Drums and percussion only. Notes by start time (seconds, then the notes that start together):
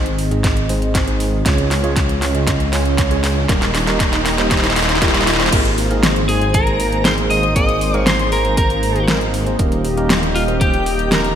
0.06 closed hi-hat
0.19 open hi-hat
0.31 closed hi-hat
0.44 kick, snare, closed hi-hat
0.57 closed hi-hat
0.69 open hi-hat
0.82 closed hi-hat
0.95 kick, snare, closed hi-hat
1.08 closed hi-hat
1.20 open hi-hat
1.46 kick, snare, closed hi-hat
1.58 closed hi-hat
1.71 snare, open hi-hat
1.84 closed hi-hat
1.96 kick, snare, closed hi-hat
2.09 closed hi-hat
2.22 snare, open hi-hat
2.35 closed hi-hat
2.47 kick, snare, closed hi-hat
2.60 closed hi-hat
2.73 snare, open hi-hat
2.86 closed hi-hat
2.98 kick, snare, closed hi-hat
3.11 closed hi-hat
3.24 snare, open hi-hat
3.49 kick, snare, closed hi-hat
3.62 snare, closed hi-hat
3.75 snare, open hi-hat
3.87 snare, closed hi-hat
4.00 kick, snare, closed hi-hat
4.13 snare, closed hi-hat
4.26 snare, open hi-hat
4.38 snare, closed hi-hat
4.51 kick, snare, closed hi-hat
4.57 snare
4.64 snare, closed hi-hat
4.70 snare
4.76 snare, open hi-hat
4.83 snare
4.89 snare, closed hi-hat
4.95 snare
5.02 kick, snare, closed hi-hat
5.08 snare
5.14 snare, closed hi-hat
5.21 snare
5.27 snare, open hi-hat
5.34 snare
5.40 snare
5.46 snare
5.53 kick, closed hi-hat, crash
5.65 closed hi-hat
5.78 open hi-hat
5.91 closed hi-hat
6.03 snare, closed hi-hat
6.16 closed hi-hat
6.29 open hi-hat
6.41 closed hi-hat
6.54 kick, closed hi-hat
6.67 closed hi-hat
6.80 open hi-hat
6.92 closed hi-hat
7.05 snare, closed hi-hat
7.18 closed hi-hat
7.30 open hi-hat
7.43 closed hi-hat
7.56 kick, closed hi-hat
7.69 closed hi-hat
7.81 open hi-hat
7.94 closed hi-hat
8.07 snare, closed hi-hat
8.19 closed hi-hat
8.32 open hi-hat
8.45 closed hi-hat
8.57 kick, closed hi-hat
8.70 closed hi-hat
8.83 open hi-hat
8.96 closed hi-hat
9.08 snare, closed hi-hat
9.21 closed hi-hat
9.34 open hi-hat
9.47 closed hi-hat
9.59 kick, closed hi-hat
9.72 closed hi-hat
9.85 open hi-hat
9.97 closed hi-hat
10.10 snare, closed hi-hat
10.23 closed hi-hat
10.36 open hi-hat
10.48 closed hi-hat
10.61 kick, closed hi-hat
10.74 closed hi-hat
10.86 open hi-hat
10.99 closed hi-hat
11.12 snare, closed hi-hat
11.24 closed hi-hat